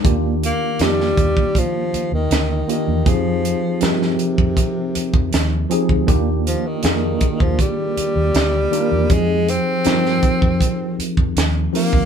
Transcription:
<<
  \new Staff \with { instrumentName = "Tine electric piano" } { \time 4/4 \key ees \major \tempo 4 = 80 <ees bes d' f' g'>4 <ees bes d' f' g'>4.~ <ees bes d' f' g'>16 r8. <ees bes d' f' g'>8 | <f c' ees' g' aes'>4 <f c' ees' g' bes'>4.~ <f c' ees' g' bes'>16 r8. <f c' ees' g' aes'>8 | <ees bes d' f' g'>4 <ees bes d' f' aes' bes'>4.~ <ees bes d' f' aes' bes'>16 r8. <ees bes d' f' bes'>8 | <f c' ees' g' aes'>4 <f c' ees' g' bes'>4.~ <f c' ees' g' bes'>16 r8. <f c' ees' g' bes'>8 | }
  \new Staff \with { instrumentName = "Tenor saxophone" } { \clef bass \time 4/4 \key ees \major r8 bes8 g4 f8. ees8. ees8 | f4 c2~ c8 r8 | r8 f16 ees4 f16 g2 | aes8 c'2 r4 bes8 | }
  \new Staff \with { instrumentName = "Fingered electric bass" } { \clef bass \time 4/4 \key ees \major ees,8. r16 f,8 ees,16 r4 ees,16 d,8 r16 e,16 | r4 g,8 r16 f,16 r8. f,16 ees,8 r16 d,16 | ees,8. r16 f,8 r16 ees,16 r8. ees,16 d,8 r16 e,16 | f,8. r16 g,8 r16 f,16 r8. f,16 ees,8 r16 d,16 | }
  \new DrumStaff \with { instrumentName = "Drums" } \drummode { \time 4/4 <hh bd>8 hh8 <hh sn>16 sn16 <hh bd>16 bd16 <hh bd>8 hh8 <hh sn>8 hh8 | <hh bd>8 hh8 <hh sn>16 sn16 hh16 bd16 <hh bd>8 hh16 bd16 <hh sn>8 hh16 bd16 | <hh bd>8 hh8 <hh sn>8 <hh bd>16 bd16 <hh bd>8 hh8 <hh sn>8 hh8 | <hh bd>8 hh8 <hh sn>16 sn16 <hh bd>16 bd16 <hh bd>8 hh16 bd16 <hh sn>8 hho16 bd16 | }
>>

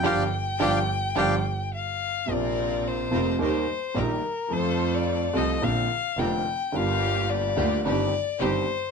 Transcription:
<<
  \new Staff \with { instrumentName = "Bandoneon" } { \time 4/4 \key g \minor \tempo 4 = 108 <d'' f'' g''>8 r8 <d'' f'' g''>8 r8 <d'' f'' g''>8 r4. | \key bes \major r1 | r1 | r1 | }
  \new Staff \with { instrumentName = "Violin" } { \time 4/4 \key g \minor g''2. f''4 | \key bes \major d''4 c''4 c''4 bes'4 | c''8. d''8. ees''8 f''4 g''4 | f''4 d''4 d''4 c''4 | }
  \new Staff \with { instrumentName = "String section" } { \time 4/4 \key g \minor <f' g' bes'>8 r8 <f' g' bes'>8 r8 <f' g' bes'>8 r4. | \key bes \major <c' f' bes'>4. <c' f' bes'>8 <ees' g' bes'>8 r8 <ees' g' bes'>8 r8 | <c' f' a'>4. <c' f' a'>8 <c' d' bes'>8 r8 <c' d' bes'>8 r8 | <bes f' g'>4. <bes f' g'>8 <c' ees' g'>8 r8 <c' ees' g'>8 r8 | }
  \new Staff \with { instrumentName = "Upright piano" } { \clef bass \time 4/4 \key g \minor <d f g>8 r8 <d f g>8 r8 <d f g>8 r4. | \key bes \major <bes,, bes, c f bes f'>4. <f,, f, c f bes f'>8 <ees, ees g bes g'>8 r8 <bes,, bes, ees g bes g'>8 r8 | <f, f a c' a'>4. <c, c f a c' a'>8 <bes,, bes, d bes c' f'>8 r8 <f,, f, d bes c' f'>8 r8 | <g,, g, d g bes f'>4. <d, d g bes f'>8 <g,, g, ees g c' g'>8 r8 <g,, g, ees g c' g'>8 r8 | }
  \new Staff \with { instrumentName = "Double bass" } { \clef bass \time 4/4 \key g \minor g,,8 r8 g,,8 r8 g,,8 r4. | \key bes \major bes,,4. f,,8 ees,8 r8 bes,,8 r8 | f,4. c,8 bes,,8 r8 f,,8 r8 | g,,4. d,8 g,,8 r8 g,,8 r8 | }
>>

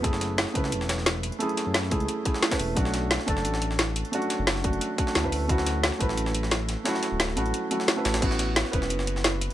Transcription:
<<
  \new Staff \with { instrumentName = "Felt piano" } { \time 4/4 \key d \lydian \tempo 4 = 176 <a cis' e' gis'>4. <a cis' e' b'>2~ <a cis' e' b'>8 | <a cis' e' gis'>4. <a cis' e' gis'>4 <a cis' e' gis'>8. <a cis' e' b'>8. | <a cis' d' fis'>4. <a cis' d' a'>2~ <a cis' d' a'>8 | <a cis' d' fis'>4. <a cis' d' fis'>4 <a cis' d' fis'>8. <a cis' e' b'>8. |
<a cis' e' fis'>4. <a cis' e' b'>2~ <a cis' e' b'>8 | <a cis' e' fis'>4. <a cis' e' fis'>4 <a cis' e' fis'>8. <a cis' e' b'>8. | <b cis' e' fis'>4. <b cis' e' b'>2~ <b cis' e' b'>8 | }
  \new Staff \with { instrumentName = "Analog synth bass" } { \clef bass \time 4/4 \key d \lydian fis,,4~ fis,,16 r16 cis,8 e,,4.~ e,,16 r16 | r8. fis,8. cis,8 r4. e,,8 | b,,4~ b,,16 r16 fis,,8 a,,4.~ a,,16 r16 | r8. fis,,8. fis,,8 r4 d,4 |
d,4~ d,16 r16 a,,8 a,,4.~ a,,16 r16 | r8. d,,8. a,,8 r4. a,,8 | a,,4~ a,,16 r16 e,,8 fis,,4.~ fis,,16 r16 | }
  \new DrumStaff \with { instrumentName = "Drums" } \drummode { \time 4/4 <hh bd>16 sn16 <hh sn>8 <hh sn>16 sn16 <hh bd>16 sn16 hh16 sn16 <hh sn>16 sn16 <hh sn>8 hh16 hh16 | hh16 hh16 <hh sn>8 <hh sn>16 sn16 <hh bd>16 hh16 hh8 <hh bd>16 sn16 <hh sn>16 <hh bd sn>16 <hh hho>8 | <hh bd>16 sn16 <hh sn>8 <hh sn>16 sn16 <hh bd>16 sn16 hh16 sn16 hh16 sn16 <hh sn>8 hh16 hh16 | hh16 hh16 <hh sn>8 <hh sn>16 sn16 <hh bd>16 hh16 hh8 <hh bd>16 sn16 <hh sn>16 bd16 <hh hho>8 |
<hh bd>16 sn16 <hh sn>8 <hh sn>16 sn16 <hh bd>16 sn16 hh16 sn16 hh16 sn16 <hh sn>8 <hh sn>8 | <hh sn>16 sn16 <hh sn>8 <hh sn>16 sn16 hh16 hh16 hh8 hh16 sn16 <hh sn>8 <hh sn>16 <hh sn>16 | <cymc hh bd>16 sn16 <hh sn>8 <hh sn>16 sn16 <hh bd>16 sn16 hh16 sn16 hh16 sn16 <hh sn>8 hh16 hh16 | }
>>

